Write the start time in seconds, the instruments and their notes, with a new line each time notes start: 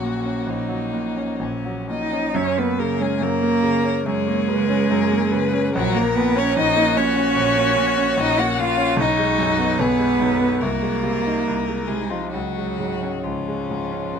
Already playing: grand piano A#1 F#3 C#4, cello A#3, violin F#4
0.00 grand piano A#2
0.25 grand piano C#4
0.47 grand piano A#1, violin D#4
0.68 grand piano F#3
0.93 grand piano A#2
1.16 grand piano C#4
1.39 grand piano A#1, violin C#4
1.65 grand piano F#3
1.89 grand piano A#2, cello D#4, violin D#5
2.12 grand piano C#4
2.34 grand piano F#2, cello C#4, violin C#5
2.58 grand piano A#3, cello B3, violin B4
2.79 grand piano C#3, cello A#3, violin A#4
2.99 cello G#3, grand piano C#4, violin G#4
3.20 grand piano F#2, cello A#3, violin A#4
3.42 grand piano A#3
3.63 grand piano C#3
3.85 grand piano C#4
4.04 grand piano F#2, cello G#3, violin G#4 C#5
4.28 grand piano A#3
4.48 grand piano C#3, violin B4
4.69 grand piano C#4
4.91 grand piano F#2, violin A#4
5.11 grand piano A#3
5.31 grand piano C#3, violin B4
5.53 grand piano C#4
5.74 grand piano A#1, cello F#3, violin F#4 A#4
5.95 cello A#3, grand piano A#3, violin A#4
6.14 grand piano A#2, cello B3, violin B4
6.36 cello C#4, grand piano C#4, violin C#5
6.57 grand piano A#1, cello D#4, violin F#4 D#5
6.76 grand piano A#3
6.96 grand piano A#2, cello C#4, violin C#5
7.16 grand piano C#4
7.36 grand piano A#1
7.56 grand piano A#3
7.77 grand piano A#2
7.97 grand piano C#4
8.17 grand piano A#1, cello D#4, violin D#5
8.39 grand piano A#3, cello F#4, violin F#5
8.58 grand piano A#2, cello F4, violin F5
8.77 grand piano C#4
8.97 grand piano B1, cello D#4, violin F#4 D#5
9.18 grand piano G#3
9.38 grand piano F#2
9.59 grand piano B3
9.79 grand piano B1, cello B3, violin G#4 B4
9.99 grand piano G#3
10.20 grand piano F#2, violin D#4
10.40 grand piano B3
10.61 grand piano C2, cello A#3, violin F#4 A#4
10.82 grand piano G#3
11.02 grand piano C3, violin F4
11.27 grand piano D#4
11.45 grand piano C2, violin D#4
11.68 grand piano G#3
11.87 grand piano C3, cello G#3, violin G#4
12.10 cello F3, grand piano D#4, violin F4
12.32 grand piano C#2, cello F#3, violin C#4 F#4
12.57 grand piano G#3
12.79 grand piano G#2
13.02 grand piano C#4
13.23 grand piano C#2, cello F3, violin C#4 F4
13.48 grand piano G#3
13.70 grand piano G#2
13.92 grand piano C#4
14.13 grand piano C#2, violin A#3